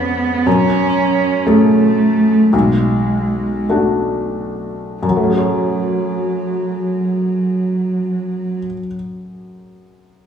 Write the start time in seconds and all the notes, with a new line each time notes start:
Already playing: F2 B3 C#4 G#4
0.46 F#2 C#4
1.47 A3 C#4 G#4
2.53 B1 G#3
3.69 A3 D4 F#4
5.03 F#2 F#3
5.09 F#3
5.17 A3
5.24 C#4
5.30 G#4
5.38 C#5